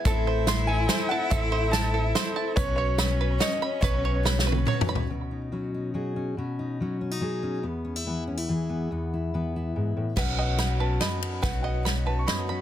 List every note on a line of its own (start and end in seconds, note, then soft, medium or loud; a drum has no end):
0.05 0.85 A1 loud
0.05 0.48 A2 medium
0.05 0.48 E3 medium
0.05 0.46 A3 medium
0.05 0.47 C4 medium
0.05 2.59 E4 loud
0.05 0.48 E4 medium
0.05 0.68 A4 medium
0.05 0.48 A4 medium
0.05 kick loud
0.05 closed hi-hat medium
0.27 0.88 C5 medium
0.47 0.87 A3 medium
0.47 0.88 C4 medium
0.47 0.89 E4 medium
0.47 0.89 A4 medium
0.47 1.32 C6 medium
0.47 snare medium
0.47 closed hi-hat medium
0.67 1.31 A4 medium
0.67 1.11 G#5 medium
0.88 1.10 A3 medium
0.88 1.10 C4 medium
0.88 1.09 E4 medium
0.88 1.08 A4 medium
0.88 1.51 C5 medium
0.88 snare medium
0.88 closed hi-hat medium
1.09 1.29 A3 soft
1.09 1.29 C4 soft
1.09 1.30 E4 medium
1.09 1.30 A4 soft
1.09 1.31 F#5 loud
1.09 1.72 A5 medium
1.30 2.11 A1 loud
1.30 1.73 A2 medium
1.30 1.73 E3 medium
1.30 1.71 A3 medium
1.30 1.72 C4 medium
1.30 1.73 E4 medium
1.30 1.73 A4 medium
1.30 1.93 A4 medium
1.30 1.74 E5 loud
1.30 kick loud
1.30 closed hi-hat medium
1.52 2.14 C5 medium
1.71 1.94 A3 medium
1.71 1.93 C4 medium
1.71 1.93 E4 medium
1.71 1.92 A4 medium
1.71 2.31 A5 loud
1.71 2.35 A5 medium
1.71 snare medium
1.71 closed hi-hat medium
1.93 2.14 A3 soft
1.93 2.14 C4 soft
1.93 2.15 E4 soft
1.93 2.15 A4 soft
1.93 2.56 A4 medium
2.15 2.56 A3 medium
2.15 2.57 C4 medium
2.15 2.57 E4 medium
2.15 2.57 A4 medium
2.15 2.57 C5 medium
2.15 snare medium
2.15 closed hi-hat medium
2.36 2.57 A5 medium
2.56 3.37 B1 loud
2.56 2.99 B2 medium
2.56 2.98 F#3 medium
2.56 2.99 C#4 medium
2.56 4.89 C#4 medium
2.56 2.99 F#4 medium
2.56 3.19 B4 loud
2.56 3.00 B4 medium
2.56 2.74 C#5 loud
2.56 kick loud
2.56 closed hi-hat medium
2.76 3.36 C#5 medium
2.76 3.40 C#5 medium
2.98 3.38 F#3 medium
2.98 3.39 C#4 medium
2.98 3.40 F#4 medium
2.98 3.41 B4 medium
2.98 3.61 B5 medium
2.98 snare medium
2.98 closed hi-hat medium
3.21 3.82 B4 medium
3.38 3.81 F#3 medium
3.38 3.81 C#4 medium
3.38 3.82 F#4 medium
3.38 3.82 B4 medium
3.38 4.04 C#5 medium
3.38 3.84 D#5 loud
3.38 snare medium
3.38 closed hi-hat medium
3.62 4.24 B5 medium
3.81 4.63 B1 loud
3.81 4.24 B2 medium
3.81 4.22 F#3 medium
3.81 4.23 C#4 medium
3.81 4.24 F#4 medium
3.81 4.25 B4 medium
3.81 4.46 B4 loud
3.81 4.83 C#5 medium
3.81 kick loud
3.81 closed hi-hat medium
4.05 4.67 C#5 medium
4.23 4.45 F#3 medium
4.23 4.46 C#4 medium
4.23 4.45 F#4 medium
4.23 4.44 B4 medium
4.23 4.88 B5 medium
4.23 snare medium
4.39 snare medium
4.45 4.66 C#4 soft
4.45 4.66 F#4 soft
4.45 4.66 B4 medium
4.45 5.10 B4 medium
4.52 high tom medium
4.65 4.88 F#3 medium
4.65 4.88 C#4 medium
4.65 4.88 F#4 medium
4.65 4.87 B4 medium
4.65 5.10 C#5 medium
4.65 mid tom medium
4.81 mid tom loud
4.88 5.10 C#4 soft
4.88 5.10 F#4 medium
4.88 5.09 B4 medium
4.88 5.10 B5 medium
4.95 floor tom medium
5.10 6.36 B2 soft
5.10 5.52 C#4 soft
5.31 5.73 D#4 soft
5.52 5.93 F#3 soft
5.52 6.15 C#4 soft
5.74 6.35 D#4 soft
5.94 6.34 F#3 soft
5.94 6.34 G#4 soft
6.16 6.34 C#4 soft
6.37 7.64 B2 soft
6.37 6.80 C#4 soft
6.59 7.01 D#4 soft
6.80 7.20 F#3 soft
6.80 7.00 C#4 soft
7.01 7.11 C#4 soft
7.11 7.64 D#4 soft
7.21 7.61 F#3 soft
7.21 7.61 G#4 soft
7.43 7.61 C#4 soft
7.63 8.90 E2 medium
7.63 8.07 B3 soft
7.85 7.96 C#4 soft
7.96 8.27 E4 soft
8.07 8.48 E3 soft
8.07 8.69 B3 soft
8.27 8.37 C#4 soft
8.37 8.91 E4 soft
8.49 9.33 E3 medium
8.49 8.89 G#4 soft
8.69 8.92 B3 soft
8.91 9.75 E2 medium
8.91 9.33 B3 soft
9.14 9.55 E4 soft
9.34 10.18 E3 soft
9.34 10.16 B3 soft
9.56 10.16 E4 soft
9.76 9.96 G#2 medium
9.97 10.18 A2 soft
10.16 10.97 B1 medium
10.16 10.59 B2 medium
10.16 11.02 B2 medium
10.16 10.59 D#3 medium
10.16 10.56 F#3 medium
10.16 10.59 F#3 soft
10.16 10.58 B3 medium
10.16 10.58 C#4 medium
10.16 10.79 C#4 soft
10.16 10.39 D#4 soft
10.16 10.59 F#4 medium
10.16 10.79 B4 medium
10.16 10.37 F#5 medium
10.16 kick medium
10.16 snare soft
10.16 crash medium
10.21 11.00 F#4 medium
10.39 11.42 D#4 soft
10.39 10.99 D#5 medium
10.39 10.82 F#5 medium
10.57 10.99 F#3 soft
10.57 11.41 F#3 medium
10.57 11.00 B3 soft
10.57 11.00 C#4 soft
10.57 11.01 F#4 soft
10.57 11.43 B5 medium
10.57 snare soft
10.57 ride soft
10.80 11.22 C#4 soft
10.80 11.41 B4 medium
10.80 11.02 A5 medium
11.00 11.41 F#2 medium
11.00 11.41 F#3 soft
11.00 11.42 B3 soft
11.00 11.42 C#4 medium
11.00 11.43 F#4 medium
11.00 11.42 F#4 soft
11.00 11.63 D#5 medium
11.00 11.44 B5 medium
11.00 snare soft
11.00 ride soft
11.22 11.42 C#4 medium
11.22 ride medium
11.42 12.24 B1 medium
11.42 11.85 B2 medium
11.42 12.28 B2 medium
11.42 11.85 D#3 medium
11.42 11.82 F#3 medium
11.42 11.84 B3 medium
11.42 11.84 C#4 medium
11.42 11.84 F#4 medium
11.42 12.27 F#4 medium
11.42 12.05 B4 medium
11.42 11.61 F#5 medium
11.42 kick loud
11.42 snare medium
11.42 ride medium
11.63 12.61 D#4 soft
11.63 12.26 D#5 medium
11.63 12.03 F#5 medium
11.83 12.26 F#3 soft
11.83 12.61 F#3 medium
11.83 12.27 B3 soft
11.83 12.27 C#4 medium
11.83 12.28 F#4 medium
11.83 12.48 B5 medium
11.83 snare soft
11.83 ride soft
12.06 12.49 C#4 soft
12.06 12.61 B4 medium
12.06 12.21 A5 medium
12.19 12.27 C#6 medium
12.27 12.61 F#2 medium
12.27 12.48 F#3 medium
12.27 12.48 B3 soft
12.27 12.48 C#4 soft
12.27 12.61 F#4 medium
12.27 12.46 F#4 medium
12.27 12.61 D#5 medium
12.27 12.61 B5 medium
12.27 snare medium
12.27 ride soft
12.48 12.61 F#3 soft
12.48 12.61 B3 soft
12.48 12.61 C#4 soft
12.48 12.61 C#4 medium
12.48 12.61 F#4 soft
12.48 12.61 B5 medium